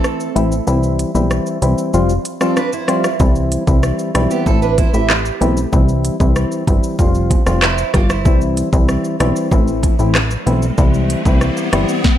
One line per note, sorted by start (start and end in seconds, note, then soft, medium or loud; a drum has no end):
0.00 0.28 E3 medium
0.00 0.28 A3 medium
0.00 0.28 C4 medium
0.00 0.64 C4 medium
0.00 0.28 E4 loud
0.00 0.64 A4 medium
0.04 cross-stick medium
0.04 shaker medium
0.20 shaker medium
0.35 0.61 A1 loud
0.35 0.55 E3 medium
0.35 0.55 A3 medium
0.35 0.55 C4 medium
0.35 0.55 E4 medium
0.35 closed hi-hat medium
0.35 shaker soft
0.52 shaker medium
0.67 1.05 C2 loud
0.67 1.11 E3 medium
0.67 1.11 G3 medium
0.67 1.11 C4 medium
0.67 1.11 E4 loud
0.67 shaker medium
0.83 shaker soft
0.99 closed hi-hat medium
0.99 shaker medium
1.15 1.40 B1 loud
1.15 1.58 E3 medium
1.15 1.58 G3 medium
1.15 1.58 C4 medium
1.15 1.59 E4 medium
1.15 shaker medium
1.31 cross-stick medium
1.31 shaker medium
1.46 shaker medium
1.62 1.75 C2 medium
1.62 1.91 E3 medium
1.62 1.91 G3 medium
1.62 1.91 C4 medium
1.62 1.91 E4 medium
1.62 closed hi-hat medium
1.62 shaker medium
1.78 shaker medium
1.93 2.19 F1 loud
1.93 2.13 F3 medium
1.93 2.13 G3 medium
1.93 2.13 C4 medium
1.93 2.13 F4 loud
1.93 shaker medium
2.09 shaker soft
2.25 closed hi-hat medium
2.25 shaker medium
2.41 2.60 F3 medium
2.41 2.60 G3 medium
2.41 2.60 C4 medium
2.41 2.56 C4 medium
2.41 2.60 F4 medium
2.41 2.56 A4 medium
2.41 cross-stick medium
2.41 shaker medium
2.57 2.72 D4 medium
2.57 2.72 B4 medium
2.57 cross-stick medium
2.57 shaker medium
2.73 3.18 E4 medium
2.73 3.18 C5 medium
2.73 shaker medium
2.88 3.07 F3 medium
2.88 3.08 G3 medium
2.88 3.08 C4 medium
2.88 3.08 F4 medium
2.88 cross-stick medium
2.88 closed hi-hat medium
2.88 shaker soft
3.04 cross-stick medium
3.04 shaker medium
3.20 3.58 C2 loud
3.20 3.64 E3 medium
3.20 3.64 G3 medium
3.20 3.64 C4 medium
3.20 3.64 E4 medium
3.20 kick loud
3.20 high bongo medium
3.20 shaker medium
3.35 shaker soft
3.52 closed hi-hat medium
3.52 shaker medium
3.67 3.93 C2 loud
3.67 4.11 E3 medium
3.67 4.11 G3 medium
3.67 4.11 C4 medium
3.67 4.11 E4 medium
3.67 kick loud
3.67 shaker medium
3.83 cross-stick medium
3.83 shaker medium
3.99 shaker soft
4.15 4.27 B1 loud
4.15 4.44 E3 medium
4.15 4.44 G3 medium
4.15 4.44 C4 medium
4.15 4.44 E4 medium
4.15 cross-stick loud
4.15 closed hi-hat medium
4.15 high bongo soft
4.15 shaker medium
4.31 4.46 B3 medium
4.31 4.46 G4 medium
4.31 shaker medium
4.46 4.84 A1 loud
4.46 4.90 E3 medium
4.46 4.90 A3 medium
4.46 4.90 C4 medium
4.46 4.62 C4 medium
4.46 4.90 E4 loud
4.46 4.61 A4 medium
4.46 kick loud
4.46 high bongo medium
4.46 shaker medium
4.62 4.78 D4 medium
4.62 4.77 B4 medium
4.62 shaker soft
4.78 4.93 E4 medium
4.78 4.93 C5 medium
4.78 kick medium
4.78 closed hi-hat medium
4.78 high bongo medium
4.78 shaker medium
4.93 5.32 A1 medium
4.93 5.13 E3 medium
4.93 5.13 A3 medium
4.93 5.13 C4 medium
4.93 5.13 E4 medium
4.93 5.69 G4 medium
4.93 5.69 E5 medium
4.93 shaker medium
5.10 cross-stick medium
5.10 clap medium
5.10 shaker medium
5.25 shaker medium
5.41 5.66 B1 loud
5.41 5.60 E3 medium
5.41 5.60 A3 medium
5.41 5.60 C4 medium
5.41 5.60 E4 medium
5.41 closed hi-hat medium
5.41 low bongo medium
5.41 shaker soft
5.57 shaker medium
5.72 6.10 C2 loud
5.72 6.16 E3 medium
5.72 6.16 G3 medium
5.72 6.16 C4 medium
5.72 6.17 E4 loud
5.72 kick loud
5.72 high bongo medium
5.72 shaker medium
5.89 shaker soft
6.05 closed hi-hat medium
6.05 shaker medium
6.20 6.45 C2 loud
6.20 6.64 E3 medium
6.20 6.64 G3 medium
6.20 6.64 C4 medium
6.20 6.64 E4 medium
6.20 kick loud
6.20 shaker medium
6.36 cross-stick medium
6.36 shaker medium
6.52 shaker medium
6.67 6.80 G1 loud
6.67 6.96 E3 medium
6.67 6.97 G3 medium
6.67 6.97 C4 medium
6.67 6.97 E4 medium
6.67 kick loud
6.67 closed hi-hat medium
6.67 high bongo soft
6.67 shaker medium
6.83 shaker medium
6.99 7.37 F1 loud
6.99 7.43 F3 loud
6.99 7.43 G3 medium
6.99 7.43 C4 medium
6.99 7.43 F4 loud
6.99 kick medium
6.99 high bongo medium
6.99 shaker medium
7.15 shaker soft
7.30 kick medium
7.30 closed hi-hat medium
7.30 high bongo medium
7.30 shaker medium
7.46 7.84 F1 medium
7.46 7.65 F3 medium
7.46 7.65 G3 medium
7.46 7.66 C4 medium
7.46 7.66 F4 medium
7.46 cross-stick medium
7.46 shaker medium
7.62 7.93 E4 medium
7.62 7.92 C5 medium
7.62 cross-stick medium
7.62 clap loud
7.62 shaker medium
7.78 shaker medium
7.94 8.27 G1 medium
7.94 8.09 F4 medium
7.94 8.09 D5 medium
7.94 kick medium
7.94 cross-stick medium
7.94 closed hi-hat medium
7.94 low bongo medium
7.94 shaker medium
8.09 8.40 E4 medium
8.09 8.39 C5 medium
8.09 cross-stick medium
8.09 shaker medium
8.25 8.63 C2 loud
8.25 8.69 E3 medium
8.25 8.69 G3 medium
8.25 8.69 C4 medium
8.25 8.69 E4 loud
8.25 kick loud
8.25 high bongo medium
8.25 riser medium
8.25 shaker medium
8.41 shaker soft
8.57 closed hi-hat medium
8.57 shaker medium
8.73 8.98 C2 loud
8.73 9.16 E3 medium
8.73 9.16 G3 medium
8.73 9.16 C4 medium
8.73 9.16 E4 medium
8.73 kick loud
8.73 shaker medium
8.89 cross-stick medium
8.89 shaker medium
9.04 shaker soft
9.20 9.33 B1 loud
9.20 9.49 E3 medium
9.20 9.49 G3 medium
9.20 9.49 C4 medium
9.20 9.49 E4 medium
9.20 cross-stick loud
9.20 closed hi-hat medium
9.20 high bongo soft
9.20 shaker medium
9.36 shaker medium
9.51 9.89 A1 loud
9.51 9.95 E3 loud
9.51 9.95 A3 medium
9.51 9.95 C4 medium
9.51 9.95 E4 loud
9.51 kick loud
9.51 high bongo medium
9.51 shaker medium
9.68 shaker soft
9.83 kick medium
9.83 closed hi-hat medium
9.83 high bongo medium
9.83 shaker medium
9.99 10.37 A1 medium
9.99 10.18 E3 medium
9.99 10.18 A3 medium
9.99 10.18 C4 medium
9.99 10.18 E4 medium
9.99 shaker medium
10.15 cross-stick loud
10.15 clap medium
10.15 shaker medium
10.31 shaker medium
10.46 10.72 B1 loud
10.46 10.65 E3 medium
10.46 10.66 A3 medium
10.46 10.66 C4 medium
10.46 10.66 E4 medium
10.46 closed hi-hat medium
10.46 low bongo medium
10.46 shaker soft
10.62 shaker medium
10.78 11.16 C2 loud
10.78 11.22 E3 medium
10.78 11.22 G3 medium
10.78 11.22 C4 medium
10.78 11.22 E4 loud
10.78 kick loud
10.78 high bongo medium
10.78 shaker medium
10.94 shaker soft
11.10 closed hi-hat medium
11.10 shaker medium
11.25 11.51 C2 loud
11.25 11.69 E3 medium
11.25 11.69 G3 medium
11.25 11.69 C4 medium
11.25 11.69 E4 medium
11.25 kick loud
11.25 shaker medium
11.41 cross-stick medium
11.41 shaker medium
11.57 shaker medium
11.73 11.85 G1 loud
11.73 12.02 E3 medium
11.73 12.02 G3 medium
11.73 12.02 C4 medium
11.73 12.02 E4 medium
11.73 cross-stick loud
11.73 closed hi-hat medium
11.73 high bongo soft
11.73 shaker medium
11.89 shaker medium
12.04 kick loud
12.04 snare medium